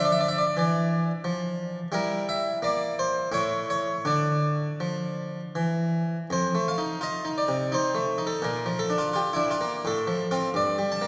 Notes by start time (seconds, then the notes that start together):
Already playing: F3 D4
0.05 D5
0.12 E5
0.21 D5
0.29 E5
0.38 D5
0.57 E3 D5
1.24 F3
1.92 G3 E4 A#4
2.29 E5
2.62 A#3 D5
2.99 C5
3.32 A2 E4 C#5
3.70 C#5
4.05 D3 D4 D5
4.80 F3
5.55 E3
6.30 F2 C5
6.55 A3
6.68 F5
6.78 D#4
7.01 F4 D#5
7.25 D#4
7.38 D5
7.48 C3
7.72 D#4 C5
7.95 A3
8.18 D#4
8.27 A4
8.42 A#2 A#4
8.66 F3
8.79 A4
8.90 D4
8.98 F4
9.13 F4 G4
9.33 D4 E4
9.51 F4
9.61 A#3
9.85 A2 A4
10.07 F3
10.31 C4 F4
10.54 G2 D5
10.78 G3
10.92 A5
11.02 A#3